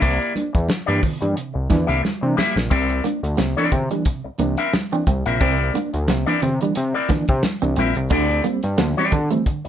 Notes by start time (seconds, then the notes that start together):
0.00 C2 C3 A#3 E4 G4 D5, kick, closed hi-hat, muted conga
0.22 closed hi-hat
0.35 A#3 D4, closed hi-hat, muted conga
0.53 E2, muted clean electric guitar stroke, kick, closed hi-hat
0.68 muted clean electric guitar stroke, snare, closed hi-hat, high conga
0.86 G2 E3 A#3 D4 E4 G4 D5
1.01 muted clean electric guitar stroke, kick, open hi-hat, low conga
1.21 G2 E3 A#3 D4, muted clean electric guitar stroke, closed hi-hat
1.35 C3, muted clean electric guitar stroke, closed hi-hat
1.54 C2, muted clean electric guitar stroke
1.70 E2 E3 A#3 D4, kick, snare, closed hi-hat, muted conga, low conga
1.87 C2 A#3 D4 E4 G4 E5, closed hi-hat
2.03 muted clean electric guitar stroke, snare, high conga
2.21 C3 E3 A#3 D4, muted clean electric guitar stroke
2.36 A#3 E4 G4 E5, snare, high conga
2.56 A#1 C3, muted clean electric guitar stroke, snare
2.70 C2 C3 C4 E4 A#4 D5, kick, closed hi-hat, muted conga
2.90 muted clean electric guitar stroke, closed hi-hat
3.04 A#3 D4, closed hi-hat, muted conga
3.23 D2, muted clean electric guitar stroke, closed hi-hat
3.37 C2 A#3, muted clean electric guitar stroke, snare, closed hi-hat, high conga
3.57 E3 A#3 C4 D4 E4 A#4 D5, closed hi-hat
3.72 C3, muted clean electric guitar stroke, kick, closed hi-hat, low conga
3.91 E3 G3 A#3 D4, muted clean electric guitar stroke, closed hi-hat
4.05 C3, muted clean electric guitar stroke, kick, closed hi-hat
4.24 C2, muted clean electric guitar stroke
4.39 C2 E3 A#3 D4, closed hi-hat, muted conga
4.57 A#3 C4 D4 E4 A#4 E5, closed hi-hat
4.73 muted clean electric guitar stroke, snare, closed hi-hat, high conga
4.92 E3 A#3 C4 D4, muted clean electric guitar stroke
5.07 C2 C4, kick, closed hi-hat, high conga
5.26 A#1 C3 C4 E4 A#4 E5, closed hi-hat
5.40 C2 C3 C4 E4 A#4 D5, kick, closed hi-hat, muted conga
5.61 muted clean electric guitar stroke
5.74 A#3 D4, closed hi-hat, muted conga
5.93 D2, muted clean electric guitar stroke, closed hi-hat
6.08 C2 A#3, muted clean electric guitar stroke, snare, closed hi-hat, high conga
6.26 E3 A#3 C4 D4 E4 A#4 D5, closed hi-hat
6.41 C3, muted clean electric guitar stroke, closed hi-hat, low conga
6.60 E3 G3 A#3 D4, muted clean electric guitar stroke, closed hi-hat
6.75 C3, muted clean electric guitar stroke, closed hi-hat
6.94 C4 E4 A#4 D5
7.09 C3 E3 A#3 D4, muted clean electric guitar stroke, kick, snare, closed hi-hat, muted conga, low conga
7.28 C3 A#3 D4, muted clean electric guitar stroke, kick, closed hi-hat
7.43 muted clean electric guitar stroke, snare, closed hi-hat, high conga
7.62 C2 E3 A#3 C4 D4, closed hi-hat
7.76 A#1 C4 E4 A#4 E5, closed hi-hat, high conga
7.95 C2 C3, muted clean electric guitar stroke, closed hi-hat
8.10 D2 D3 C4 D4 E4 G4 D5, kick, closed hi-hat
8.29 muted clean electric guitar stroke, closed hi-hat
8.44 G3 A#3 C4, closed hi-hat, muted conga
8.63 G2, muted clean electric guitar stroke, closed hi-hat
8.78 D2 A#3, muted clean electric guitar stroke, snare, closed hi-hat, high conga
8.97 E3 G3 C4 E4 G4 D5, closed hi-hat
9.12 D3, muted clean electric guitar stroke, kick, closed hi-hat, low conga
9.31 E3 G3 A3 C4, muted clean electric guitar stroke, closed hi-hat
9.46 D3, muted clean electric guitar stroke, kick, closed hi-hat
9.65 D2, muted clean electric guitar stroke, closed hi-hat